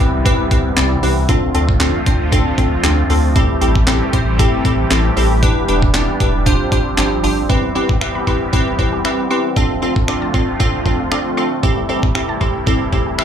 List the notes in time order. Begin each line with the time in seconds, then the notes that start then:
Already playing: C3 E3 G3 B3 E4
0.00 C2 C4 E4 G4 B4, kick, closed hi-hat
0.25 C4 E4 G4 B4, kick, closed hi-hat
0.51 C2 C4 E4 G4 B4, kick, closed hi-hat
0.77 C2 C4 E4 G4 D5, snare, clap, closed hi-hat
1.03 C2 C4 E4 G4 B4, open hi-hat
1.29 D3 F3 A3 C4 D4 F4 A4, kick, closed hi-hat
1.54 D2 C4 D4 F4 A4, closed hi-hat
1.69 kick
1.80 C4 D4 F4 A4, snare, clap, closed hi-hat
2.06 D2 C4 D4 F4 C5, kick, closed hi-hat
2.32 C4 D4 F4 A4, kick, closed hi-hat
2.58 D2 C4 D4 F4 A4, kick, closed hi-hat
2.84 D2 C4 D4 F4 A4, snare, clap, closed hi-hat
3.10 D2 C4 D4 F4 A4, open hi-hat
3.35 E3 G3 A3 C4 E4 G4 A4, kick, closed hi-hat
3.61 A1 C4 E4 G4 A4, closed hi-hat
3.75 kick
3.87 C4 E4 G4 A4, snare, clap, closed hi-hat
4.13 A1 C4 E4 G4 C5, kick, closed hi-hat
4.39 C4 E4 G4 A4, kick, closed hi-hat
4.65 A1 C4 E4 G4 A4, kick, closed hi-hat
4.91 A1 C4 E4 G4 A4, snare, clap, closed hi-hat
5.17 A1 C4 E4 G4 A4, open hi-hat
5.43 G3 B3 D4 E4 G4 B4, kick, closed hi-hat
5.68 E1 D4 E4 G4 B4, closed hi-hat
5.82 kick
5.94 D4 E4 G4 D5, snare, clap, closed hi-hat
6.20 E1 D4 E4 G4 B4, kick, closed hi-hat
6.46 F3 C4 D4 F4 G4 C5, kick, closed hi-hat
6.72 G1 D4 F4 G4 C5, kick, closed hi-hat
6.98 G1 D4 F4 G4 C5, snare, clap, closed hi-hat
7.23 G1 D4 F4 G4 C5, open hi-hat
7.49 E3 G3 B3 C4 E4 G4 B4, kick
7.63 B3
7.75 C4 E4 G4 B4
7.89 kick
8.01 C4 E4 G4 B4 E5, finger snap
8.15 B5
8.27 C4 E4 G4 B4 C6, kick
8.53 E3 C4 E4 G4 B4, kick
8.79 C4 E4 G4 B4, kick
8.93 G4
9.04 C4 E4 G4 B4 E5, finger snap
9.30 C4 E4 G4 B4 C6
9.56 D3 F3 A3 C4 D4 F4 A4, kick
9.70 A3
9.82 C4 D4 F4 A4
9.96 kick
10.08 C4 D4 F4 A4 D5, finger snap
10.22 A5
10.34 C4 D4 F4 A4 C6, kick
10.60 D3 C4 D4 F4 A4, kick
10.86 C4 D4 F4 A4, kick
10.99 F4
11.11 C4 D4 F4 A4 D5, finger snap
11.37 C4 D4 F4 A4 C6
11.63 C3 E3 G3 C4 E4 G4 A4, kick
11.77 A3
11.89 C4 E4 G4 A4
12.03 kick
12.15 C4 E4 G4 A4 E5, finger snap
12.29 A5
12.41 C4 E4 G4 A4 C6, kick
12.66 E3 C4 E4 G4 A4, kick
12.92 C4 E4 G4 A4, kick
13.06 G4
13.18 C4 E4 G4 B4 E5, finger snap